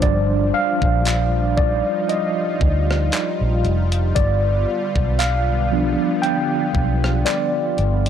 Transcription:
0.00 0.50 G1 loud
0.00 1.02 F3 medium
0.00 4.12 F3 medium
0.00 1.02 G3 medium
0.00 8.09 G3 medium
0.00 1.03 D4 medium
0.00 1.55 D4 medium
0.00 8.09 F4 medium
0.00 4.18 C5 loud
0.00 0.56 D5 loud
0.00 kick loud
0.00 closed hi-hat medium
0.54 1.61 F5 loud
0.82 1.81 A#1 medium
0.82 kick loud
1.05 clap loud
1.05 closed hi-hat medium
1.57 4.14 D#4 medium
1.57 2.11 D5 loud
1.57 kick loud
2.09 3.60 D#5 medium
2.09 closed hi-hat medium
2.61 3.09 D2 medium
2.61 kick loud
2.91 cross-stick medium
3.12 clap loud
3.12 closed hi-hat medium
3.41 3.66 A#1 medium
3.65 4.12 F1 loud
3.65 closed hi-hat soft
3.92 closed hi-hat medium
4.15 4.64 G1 loud
4.15 8.09 D3 medium
4.15 8.09 B3 medium
4.15 5.22 D5 loud
4.15 kick loud
4.15 closed hi-hat medium
4.96 5.95 B1 medium
4.96 kick medium
5.19 6.19 F5 loud
5.19 clap loud
5.19 closed hi-hat medium
5.72 8.09 F3 medium
5.72 8.09 B3 medium
5.72 8.09 D4 medium
6.22 7.22 G5 loud
6.22 closed hi-hat medium
6.75 7.23 B1 medium
6.75 kick medium
7.04 cross-stick loud
7.25 8.02 D5 loud
7.25 clap loud
7.25 closed hi-hat medium
7.78 8.09 G1 medium
7.78 closed hi-hat soft
8.06 closed hi-hat medium

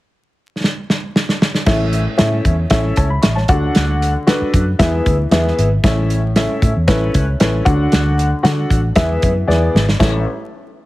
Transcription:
0.64 snare medium
0.90 snare medium
1.16 snare medium
1.29 snare medium
1.42 snare loud
1.55 snare medium
1.66 2.06 A1 loud
1.66 2.41 A2 medium
1.66 2.02 C#4 medium
1.66 2.01 E4 medium
1.66 2.02 A4 medium
1.66 2.02 E5 medium
1.66 kick medium
1.66 snare loud
1.66 crash medium
1.93 closed hi-hat medium
2.17 2.39 A2 medium
2.17 2.53 C#4 medium
2.17 2.53 E4 medium
2.17 2.53 A4 medium
2.17 2.53 E5 medium
2.17 snare loud
2.17 closed hi-hat medium
2.45 2.64 E2 medium
2.45 kick medium
2.45 closed hi-hat medium
2.70 2.90 A1 medium
2.70 3.06 C#4 medium
2.70 3.06 E4 medium
2.70 3.06 A4 medium
2.70 2.97 E5 medium
2.70 kick loud
2.70 snare loud
2.70 closed hi-hat medium
2.96 3.17 C#2 medium
2.96 3.10 C#5 soft
2.96 3.09 A5 soft
2.96 kick medium
2.96 closed hi-hat medium
3.10 3.22 B5 medium
3.22 3.44 A1 medium
3.22 3.35 E5 soft
3.22 3.35 C#6 medium
3.22 snare loud
3.22 closed hi-hat loud
3.35 3.61 C#5 soft
3.35 3.60 A5 medium
3.35 snare soft
3.48 3.69 D2 medium
3.48 4.23 D3 medium
3.48 4.11 D4 medium
3.48 4.12 F#4 medium
3.48 4.12 A4 medium
3.48 4.11 F#5 medium
3.48 kick loud
3.48 closed hi-hat medium
3.75 4.15 D2 medium
3.75 snare medium
3.75 closed hi-hat medium
4.02 closed hi-hat medium
4.27 4.62 D4 medium
4.27 4.62 F#4 medium
4.27 4.62 A4 medium
4.27 4.62 B4 medium
4.27 snare loud
4.27 closed hi-hat medium
4.41 muted fingered electric bass stroke soft
4.54 4.73 F#2 medium
4.54 kick medium
4.54 closed hi-hat medium
4.79 4.99 E2 medium
4.79 5.53 E3 medium
4.79 5.14 B3 medium
4.79 5.14 E4 medium
4.79 5.14 G#4 medium
4.79 5.14 E5 medium
4.79 kick loud
4.79 snare loud
4.79 closed hi-hat loud
5.06 5.26 D2 medium
5.06 kick medium
5.06 closed hi-hat medium
5.31 5.51 E2 medium
5.31 5.67 B3 medium
5.31 5.67 E4 medium
5.31 5.66 G#4 medium
5.31 5.67 E5 medium
5.31 snare loud
5.31 closed hi-hat medium
5.47 snare soft
5.58 5.78 G#1 medium
5.58 closed hi-hat medium
5.84 6.46 A1 loud
5.84 6.58 A2 medium
5.84 6.19 C#4 medium
5.84 6.19 E4 medium
5.84 6.19 A4 medium
5.84 6.19 E5 medium
5.84 kick loud
5.84 snare loud
5.84 closed hi-hat medium
6.10 closed hi-hat medium
6.36 6.71 C#4 medium
6.36 6.71 E4 medium
6.36 6.71 A4 medium
6.36 6.71 E5 medium
6.36 snare loud
6.36 closed hi-hat medium
6.62 6.72 A2 medium
6.62 kick medium
6.62 closed hi-hat medium
6.76 6.86 E2 medium
6.88 7.08 A1 medium
6.88 7.23 C#4 medium
6.88 7.23 E4 medium
6.88 7.23 A4 medium
6.88 7.23 B4 medium
6.88 kick medium
6.88 snare loud
6.88 closed hi-hat medium
7.14 7.34 C#2 medium
7.14 kick medium
7.14 closed hi-hat medium
7.40 7.60 A1 medium
7.40 7.66 C#4 medium
7.40 7.66 E4 medium
7.40 7.64 A4 medium
7.40 7.66 B4 medium
7.40 snare loud
7.40 closed hi-hat medium
7.65 7.86 D2 medium
7.65 8.40 D3 medium
7.65 8.28 D4 medium
7.65 8.28 F#4 medium
7.65 8.28 A4 medium
7.65 8.28 F#5 medium
7.65 kick loud
7.65 closed hi-hat medium
7.92 8.32 D2 loud
7.92 snare loud
7.92 closed hi-hat medium
8.19 closed hi-hat medium
8.43 8.64 D3 medium
8.43 8.79 D4 medium
8.43 8.79 F#4 medium
8.43 8.79 A4 medium
8.43 8.79 F#5 medium
8.43 snare loud
8.43 closed hi-hat medium
8.70 8.90 A1 medium
8.70 kick medium
8.70 closed hi-hat medium
8.95 9.16 E2 medium
8.95 9.70 E3 medium
8.95 9.31 B3 medium
8.95 9.31 E4 medium
8.95 9.31 G#4 medium
8.95 9.31 E5 medium
8.95 kick medium
8.95 snare loud
8.95 closed hi-hat medium
9.22 9.42 F#2 medium
9.22 kick medium
9.22 closed hi-hat medium
9.47 9.67 E2 medium
9.47 9.83 B3 medium
9.47 9.83 E4 medium
9.47 9.83 G#4 medium
9.47 9.83 D5 medium
9.47 snare medium
9.74 9.94 G#1 medium
9.74 snare loud
9.89 snare medium
9.99 10.24 A1 medium
9.99 10.24 C#4 medium
9.99 10.24 E4 medium
9.99 10.24 A4 medium
9.99 10.24 E5 medium
9.99 kick medium
9.99 snare medium
9.99 crash medium

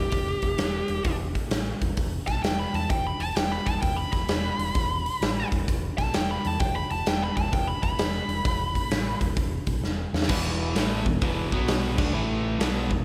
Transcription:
0.00 1.15 G4 loud
0.11 0.32 E1 loud
0.11 kick loud
0.11 open hi-hat medium
0.42 0.53 E1 medium
0.42 kick medium
0.42 open hi-hat medium
0.58 0.78 E1 medium
0.58 snare loud
0.58 open hi-hat medium
0.88 0.99 E1 medium
0.88 open hi-hat medium
1.04 1.34 E1 medium
1.04 kick loud
1.04 open hi-hat medium
1.35 kick medium
1.35 open hi-hat medium
1.51 1.70 A1 medium
1.51 snare loud
1.51 open hi-hat medium
1.81 1.91 E1 medium
1.81 kick medium
1.81 open hi-hat medium
1.97 2.17 E1 medium
1.97 kick loud
1.97 open hi-hat medium
2.27 2.38 B1 medium
2.27 2.42 A5 loud
2.27 kick medium
2.27 snare soft
2.27 open hi-hat medium
2.43 2.63 E1 medium
2.43 2.58 G5 loud
2.43 snare loud
2.43 open hi-hat medium
2.59 2.74 B5 medium
2.73 2.84 E2 medium
2.73 2.90 A5 medium
2.73 open hi-hat medium
2.90 3.09 E1 medium
2.90 3.05 G5 loud
2.90 kick loud
2.90 open hi-hat medium
3.07 3.21 B5 loud
3.19 3.30 E1 medium
3.19 3.36 A5 loud
3.19 open hi-hat medium
3.36 3.55 E1 medium
3.36 3.51 G5 loud
3.36 snare loud
3.36 open hi-hat medium
3.52 3.67 B5 loud
3.66 3.77 E1 medium
3.66 3.81 A5 loud
3.66 kick medium
3.66 open hi-hat medium
3.82 4.02 E1 loud
3.82 3.97 G5 loud
3.82 kick loud
3.82 open hi-hat medium
3.96 4.11 B5 loud
4.12 4.23 E1 medium
4.12 5.48 B5 loud
4.12 kick medium
4.12 snare soft
4.12 open hi-hat medium
4.28 4.47 E1 medium
4.28 snare loud
4.28 open hi-hat medium
4.59 4.69 E1 loud
4.59 open hi-hat medium
4.75 5.04 E1 medium
4.75 kick loud
4.75 open hi-hat medium
5.06 open hi-hat medium
5.21 5.40 A1 medium
5.21 snare loud
5.21 open hi-hat medium
5.51 5.62 E1 medium
5.51 kick medium
5.51 open hi-hat medium
5.68 5.87 E1 medium
5.68 kick loud
5.68 open hi-hat medium
5.98 6.08 B1 medium
5.98 6.13 A5 loud
5.98 kick medium
5.98 snare soft
5.98 open hi-hat medium
6.14 6.33 E1 medium
6.14 6.29 G5 loud
6.14 snare loud
6.14 open hi-hat medium
6.31 6.47 B5 medium
6.44 6.55 E2 medium
6.44 6.59 A5 loud
6.44 open hi-hat medium
6.59 6.79 E1 medium
6.59 6.75 G5 loud
6.59 kick loud
6.59 open hi-hat medium
6.76 6.91 B5 loud
6.90 7.01 E1 medium
6.90 7.08 A5 loud
6.90 open hi-hat medium
7.06 7.26 E1 medium
7.06 7.22 G5 loud
7.06 snare loud
7.06 open hi-hat medium
7.24 7.37 B5 medium
7.37 7.47 E1 medium
7.37 7.52 A5 loud
7.37 kick medium
7.37 open hi-hat medium
7.52 7.72 E1 loud
7.52 7.67 G5 loud
7.52 kick loud
7.52 open hi-hat medium
7.68 7.82 B5 medium
7.83 7.93 E1 medium
7.83 9.18 B5 loud
7.83 kick medium
7.83 open hi-hat medium
7.98 8.17 E1 medium
7.98 snare loud
7.98 open hi-hat medium
8.28 8.38 E1 medium
8.28 open hi-hat medium
8.45 8.74 E1 loud
8.45 kick loud
8.45 open hi-hat medium
8.75 kick medium
8.75 open hi-hat medium
8.90 9.10 A1 medium
8.90 snare loud
8.90 open hi-hat medium
9.21 9.31 E1 medium
9.21 kick medium
9.21 open hi-hat medium
9.36 9.56 E1 medium
9.36 kick loud
9.36 open hi-hat medium
9.66 9.77 B1 medium
9.66 kick medium
9.66 open hi-hat medium
9.83 10.02 E1 medium
9.83 snare medium
10.13 10.23 E2 medium
10.13 snare medium
10.22 snare medium
10.28 10.72 E1 loud
10.28 10.75 E2 medium
10.28 10.75 B2 loud
10.28 10.75 E3 loud
10.28 kick loud
10.28 crash loud
10.75 11.04 A1 medium
10.75 11.05 A2 medium
10.75 11.05 E3 loud
10.75 11.05 A3 loud
10.75 snare loud
10.75 open hi-hat medium
11.06 11.21 E1 medium
11.06 11.19 E2 medium
11.06 11.19 B2 medium
11.06 kick medium
11.21 11.50 E1 medium
11.21 11.51 E2 loud
11.21 11.51 B2 medium
11.21 11.52 E3 loud
11.21 kick loud
11.21 open hi-hat medium
11.52 11.95 B1 medium
11.52 11.97 B2 loud
11.52 11.97 F#3 loud
11.52 11.98 B3 loud
11.52 kick medium
11.68 snare loud
11.68 open hi-hat medium
11.97 12.13 D2 loud
11.97 12.13 D3 medium
11.97 12.13 A3 medium
11.97 12.14 D4 loud
11.97 kick loud
11.97 crash loud
12.13 12.57 A1 medium
12.13 12.59 A2 medium
12.13 12.60 E3 loud
12.13 12.60 A3 loud
12.60 12.88 B1 medium
12.60 12.90 B2 loud
12.60 12.90 F#3 loud
12.60 12.90 B3 loud
12.60 snare loud
12.60 open hi-hat medium
12.90 13.05 E1 medium
12.90 13.04 E2 medium
12.90 13.04 B2 medium
12.90 kick medium

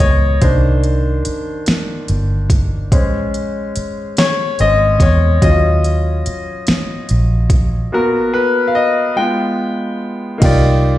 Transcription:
0.00 0.38 C#2 medium
0.00 0.44 F#3 soft
0.00 0.43 A#3 soft
0.00 0.43 B3 soft
0.00 0.43 C#5 medium
0.00 0.44 D#5 medium
0.00 kick medium
0.00 closed hi-hat medium
0.41 1.22 C2 loud
0.41 0.98 D#3 soft
0.41 0.98 A#3 soft
0.41 0.98 D4 medium
0.41 1.21 C5 medium
0.41 kick medium
0.41 closed hi-hat medium
0.84 closed hi-hat soft
1.25 muted fingered electric bass stroke soft
1.25 closed hi-hat medium
1.66 muted fingered electric bass stroke soft
1.66 snare medium
1.66 closed hi-hat medium
2.08 2.93 G1 medium
2.08 closed hi-hat medium
2.50 kick medium
2.50 closed hi-hat medium
2.92 3.72 A#1 medium
2.92 4.59 G#3 soft
2.92 4.59 C#4 medium
2.92 5.38 C5 soft
2.92 kick loud
2.92 closed hi-hat medium
3.34 closed hi-hat soft
3.76 muted fingered electric bass stroke soft
3.76 closed hi-hat medium
4.17 4.61 C#5 medium
4.17 snare loud
4.17 closed hi-hat medium
4.59 4.97 G#1 medium
4.59 4.97 G#3 soft
4.59 4.97 C4 soft
4.59 4.97 C#4 medium
4.59 5.03 D#5 loud
4.59 closed hi-hat medium
5.00 5.38 E2 medium
5.00 5.44 C#5 medium
5.00 kick medium
5.00 closed hi-hat medium
5.42 6.22 D#2 loud
5.42 6.63 F#3 medium
5.42 6.63 C#4 soft
5.42 6.64 F4 medium
5.42 6.22 D#5 medium
5.42 kick medium
5.42 closed hi-hat medium
5.84 closed hi-hat medium
6.26 muted fingered electric bass stroke soft
6.26 closed hi-hat medium
6.67 muted fingered electric bass stroke soft
6.67 snare medium
6.67 closed hi-hat medium
7.09 7.89 A#1 medium
7.09 closed hi-hat medium
7.50 kick medium
7.50 closed hi-hat medium
7.92 8.48 A#3 medium
7.92 8.48 B3 soft
7.92 8.48 F#4 medium
7.92 8.36 A#4 medium
8.34 8.41 B4 medium
8.68 8.75 F5 medium
8.75 9.18 D#5 medium
9.16 10.38 G#3 medium
9.16 10.38 B3 soft
9.16 10.38 F4 medium
9.16 9.96 G5 medium
10.38 10.98 A#3 medium
10.38 10.98 D#4 medium
10.38 10.98 F4 medium
10.38 kick loud
10.38 closed hi-hat medium
10.38 crash medium
10.42 10.98 C2 medium
10.42 10.98 G4 medium
10.42 10.98 D5 medium

